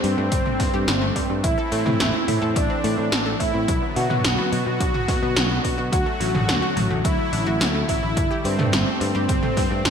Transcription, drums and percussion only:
0.04 open hi-hat
0.32 kick, closed hi-hat
0.46 mid tom
0.60 kick, snare, open hi-hat
0.88 snare, closed hi-hat
1.16 kick, open hi-hat
1.44 kick, closed hi-hat
1.72 open hi-hat
1.86 mid tom
2.00 snare, closed hi-hat
2.28 mid tom, open hi-hat
2.56 kick, closed hi-hat
2.84 open hi-hat
3.12 snare, closed hi-hat
3.40 kick, open hi-hat
3.68 kick, closed hi-hat
3.96 open hi-hat
4.10 mid tom
4.24 snare, closed hi-hat
4.53 open hi-hat
4.80 kick, closed hi-hat
4.95 mid tom
5.08 kick, snare, open hi-hat
5.37 snare, closed hi-hat
5.65 kick, open hi-hat
5.93 kick, closed hi-hat
6.21 open hi-hat
6.35 mid tom
6.49 snare, closed hi-hat
6.77 mid tom, open hi-hat
7.05 kick, closed hi-hat
7.33 open hi-hat
7.61 snare, closed hi-hat
7.89 kick, open hi-hat
8.17 kick, closed hi-hat
8.45 open hi-hat
8.59 mid tom
8.73 snare, closed hi-hat
9.01 open hi-hat
9.29 kick, closed hi-hat
9.43 mid tom
9.57 kick, snare, open hi-hat
9.85 snare, closed hi-hat

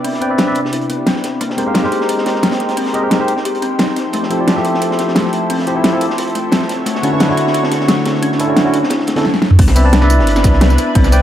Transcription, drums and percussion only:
0.05 closed hi-hat, open hi-hat
0.13 snare
0.22 closed hi-hat
0.38 snare, closed hi-hat
0.55 closed hi-hat
0.65 snare
0.73 closed hi-hat
0.81 closed hi-hat
0.90 closed hi-hat
1.06 snare, closed hi-hat
1.16 snare
1.24 snare, closed hi-hat
1.41 closed hi-hat
1.50 snare
1.58 closed hi-hat
1.74 snare, closed hi-hat
1.83 snare
1.92 closed hi-hat
2.01 snare
2.09 closed hi-hat
2.18 snare
2.26 snare, closed hi-hat
2.35 snare
2.43 snare, closed hi-hat
2.52 snare, closed hi-hat
2.60 snare, closed hi-hat
2.69 snare, closed hi-hat
2.77 closed hi-hat, open hi-hat
2.86 snare
2.94 closed hi-hat
3.11 snare, closed hi-hat
3.28 closed hi-hat
3.37 snare
3.45 closed hi-hat
3.55 closed hi-hat
3.62 closed hi-hat
3.79 snare, closed hi-hat
3.88 snare
3.96 snare, closed hi-hat
4.13 closed hi-hat
4.23 snare
4.30 closed hi-hat
4.48 snare, closed hi-hat
4.57 snare
4.65 closed hi-hat
4.74 snare
4.82 closed hi-hat
4.91 snare
4.99 snare, closed hi-hat
5.08 snare
5.15 snare, closed hi-hat
5.25 snare
5.33 closed hi-hat
5.50 closed hi-hat, open hi-hat
5.59 snare
5.67 closed hi-hat
5.84 snare, closed hi-hat
6.01 closed hi-hat
6.10 snare
6.18 closed hi-hat
6.27 closed hi-hat
6.35 closed hi-hat
6.52 snare, closed hi-hat
6.62 snare
6.69 snare, closed hi-hat
6.86 closed hi-hat
6.95 snare
7.03 closed hi-hat
7.20 snare, closed hi-hat
7.29 snare
7.37 closed hi-hat
7.47 snare
7.54 closed hi-hat
7.63 snare
7.71 snare, closed hi-hat
7.81 snare
7.88 snare, closed hi-hat
7.98 snare
8.05 snare, closed hi-hat
8.15 snare
8.22 closed hi-hat
8.32 snare
8.40 closed hi-hat
8.56 snare, closed hi-hat
8.74 closed hi-hat
8.83 snare
8.90 snare, closed hi-hat
9.00 snare
9.07 snare, closed hi-hat
9.16 snare, closed hi-hat
9.25 snare
9.34 snare
9.42 snare
9.51 mid tom
9.59 kick, closed hi-hat, crash
9.68 snare, tambourine
9.76 closed hi-hat, tambourine
9.93 snare, closed hi-hat
10.02 snare
10.10 closed hi-hat, tambourine
10.19 snare
10.27 closed hi-hat
10.36 snare, tambourine
10.44 kick, snare, closed hi-hat, tambourine
10.53 snare
10.61 snare, closed hi-hat
10.70 snare, tambourine
10.78 closed hi-hat, tambourine
10.95 kick, closed hi-hat, open hi-hat
11.04 snare, tambourine
11.12 closed hi-hat, tambourine

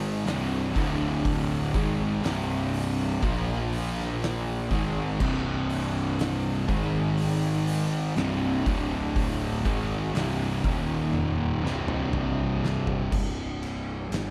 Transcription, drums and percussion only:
0.26 snare, open hi-hat
0.76 kick, open hi-hat
1.25 kick, open hi-hat
1.74 kick, open hi-hat
2.24 snare, open hi-hat
2.73 open hi-hat
3.23 kick, open hi-hat
3.72 open hi-hat
4.00 snare
4.22 snare, open hi-hat
4.71 kick, open hi-hat
5.20 kick, crash
5.70 open hi-hat
6.19 snare, open hi-hat
6.69 kick, open hi-hat
7.17 open hi-hat
7.67 open hi-hat
8.16 snare, open hi-hat
8.66 kick, open hi-hat
9.16 kick, open hi-hat
9.65 kick, open hi-hat
10.15 snare, open hi-hat
10.64 kick, open hi-hat
11.13 high tom
11.66 snare
11.88 mid tom
12.13 mid tom
12.65 snare
12.87 floor tom
13.12 kick, crash
13.63 ride
14.12 snare, ride

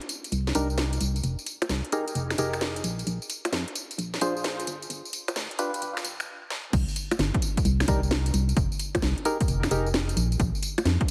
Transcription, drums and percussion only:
0.01 closed hi-hat
0.09 closed hi-hat, tambourine
0.24 closed hi-hat, tambourine
0.32 closed hi-hat, tambourine
0.47 snare, tambourine
0.55 closed hi-hat, tambourine
0.70 tambourine
0.78 snare, tambourine
0.93 closed hi-hat, tambourine
1.01 closed hi-hat, tambourine
1.16 closed hi-hat, tambourine
1.24 closed hi-hat, tambourine
1.39 tambourine
1.46 closed hi-hat, tambourine
1.62 finger snap, closed hi-hat, tambourine, high bongo
1.69 snare, tambourine
1.85 closed hi-hat
1.92 closed hi-hat, tambourine
2.08 closed hi-hat, tambourine
2.15 closed hi-hat, tambourine
2.30 finger snap, snare, tambourine
2.38 closed hi-hat, tambourine
2.53 finger snap, tambourine
2.61 snare, tambourine
2.76 closed hi-hat, tambourine
2.84 closed hi-hat, tambourine
2.99 closed hi-hat, tambourine
3.07 closed hi-hat, tambourine
3.22 tambourine
3.30 closed hi-hat, tambourine
3.45 finger snap, closed hi-hat, tambourine, high bongo
3.53 snare, tambourine
3.68 closed hi-hat
3.75 closed hi-hat, tambourine
3.91 closed hi-hat, tambourine
3.98 closed hi-hat, tambourine
4.14 snare, tambourine
4.21 closed hi-hat, tambourine
4.37 tambourine
4.44 snare, tambourine
4.60 closed hi-hat, tambourine
4.67 closed hi-hat, tambourine
4.82 closed hi-hat, tambourine
4.90 closed hi-hat, tambourine
5.05 tambourine
5.13 closed hi-hat, tambourine
5.28 finger snap, closed hi-hat, tambourine, high bongo
5.36 snare, tambourine
5.51 closed hi-hat
5.59 closed hi-hat, tambourine
5.74 closed hi-hat, tambourine
5.82 closed hi-hat, tambourine
5.97 finger snap, snare, tambourine
6.04 closed hi-hat, tambourine
6.20 finger snap, tambourine
6.50 snare
6.73 kick, closed hi-hat, crash, tambourine
6.89 tambourine
6.96 closed hi-hat, tambourine
7.11 finger snap, closed hi-hat, tambourine, high bongo
7.19 snare, tambourine
7.34 kick, closed hi-hat
7.42 closed hi-hat, tambourine
7.57 kick, closed hi-hat, tambourine
7.65 closed hi-hat, tambourine
7.80 finger snap, snare, tambourine
7.88 kick, closed hi-hat, tambourine
8.03 tambourine
8.11 snare, tambourine
8.26 closed hi-hat, tambourine
8.34 closed hi-hat, tambourine
8.49 closed hi-hat, tambourine
8.57 kick, closed hi-hat, tambourine
8.72 tambourine
8.80 closed hi-hat, tambourine
8.95 finger snap, kick, closed hi-hat, tambourine, high bongo
9.02 snare, tambourine
9.18 closed hi-hat
9.25 closed hi-hat, tambourine
9.40 kick, closed hi-hat, tambourine
9.48 closed hi-hat, tambourine
9.63 finger snap, snare, tambourine
9.71 closed hi-hat, tambourine
9.86 tambourine
9.94 snare, tambourine
10.09 closed hi-hat, tambourine
10.17 closed hi-hat, tambourine
10.32 closed hi-hat, tambourine
10.40 kick, closed hi-hat, tambourine
10.55 tambourine
10.63 closed hi-hat, tambourine
10.78 finger snap, closed hi-hat, tambourine, high bongo
10.85 snare, tambourine
11.01 kick, closed hi-hat

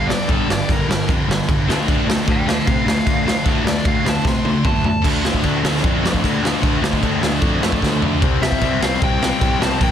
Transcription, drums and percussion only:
0.10 snare
0.29 kick, crash
0.50 snare
0.69 kick, crash
0.91 snare
1.09 kick, crash
1.31 snare
1.49 kick, crash
1.70 snare
1.88 kick, crash
2.10 snare
2.28 kick, crash
2.49 snare
2.67 kick, crash
2.88 snare
3.07 kick, crash
3.28 snare
3.45 kick, crash
3.67 snare
3.85 kick, crash
4.06 snare
4.25 kick, snare
4.45 high tom
4.65 kick, mid tom
4.84 floor tom
5.04 kick, crash
5.25 snare
5.34 kick
5.43 kick, crash
5.65 snare
5.84 kick, crash
6.06 snare
6.14 kick
6.24 kick, crash
6.45 snare
6.63 kick, crash
6.84 snare
6.93 kick
7.03 kick, crash
7.23 snare
7.42 kick, crash
7.63 snare
7.72 kick
7.82 kick, snare
8.02 floor tom
8.22 kick, crash
8.43 snare
8.52 kick
8.61 kick, crash
8.83 snare
9.02 kick, crash
9.23 snare
9.41 kick, crash
9.62 snare
9.81 kick, crash

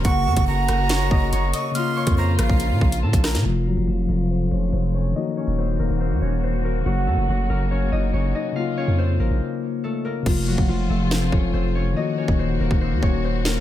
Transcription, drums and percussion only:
0.05 kick, closed hi-hat
0.37 kick, closed hi-hat
0.69 cross-stick, closed hi-hat
0.89 snare, closed hi-hat
1.11 kick
1.33 closed hi-hat
1.54 closed hi-hat
1.75 closed hi-hat
2.07 kick, closed hi-hat
2.39 cross-stick, closed hi-hat
2.50 kick
2.60 closed hi-hat
2.81 kick
2.92 closed hi-hat
3.13 kick, closed hi-hat
3.24 cross-stick, snare, open hi-hat
3.35 snare, closed hi-hat
10.26 kick, crash
10.58 kick
11.11 snare
11.32 kick
12.28 kick
12.71 kick
13.03 kick
13.45 snare

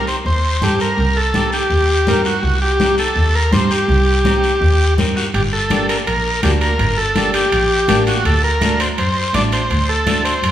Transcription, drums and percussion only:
0.07 short guiro
0.26 high conga, long guiro
0.62 high conga, short guiro
0.80 short guiro
0.98 high conga, long guiro
1.34 high conga, short guiro
1.52 short guiro
1.71 high conga, long guiro
2.07 high conga, short guiro
2.25 short guiro
2.43 high conga, long guiro
2.80 high conga, short guiro
2.98 short guiro
3.16 high conga, long guiro
3.52 high conga, short guiro
3.71 short guiro
3.89 high conga, long guiro
4.25 high conga, short guiro
4.44 short guiro
4.62 high conga, long guiro
4.98 high conga, short guiro
5.17 short guiro
5.34 high conga, high timbale, long guiro
5.70 high conga, high timbale, short guiro
5.89 high timbale, short guiro
6.07 high conga, high timbale, long guiro
6.43 high conga, high timbale, short guiro
6.61 high timbale, short guiro
6.79 high conga, high timbale, long guiro
7.16 high conga, high timbale, short guiro
7.34 high timbale, short guiro
7.52 high conga, high timbale, long guiro
7.88 high conga, high timbale, short guiro
8.07 high timbale, short guiro
8.25 high conga, high timbale, long guiro
8.61 high conga, high timbale, short guiro
8.80 high timbale, short guiro
8.98 high conga, high timbale, long guiro
9.34 high conga, high timbale, short guiro
9.52 high timbale, short guiro
9.70 high conga, high timbale, long guiro
10.07 high conga, high timbale, short guiro
10.25 high timbale, short guiro
10.43 high conga, high timbale, long guiro

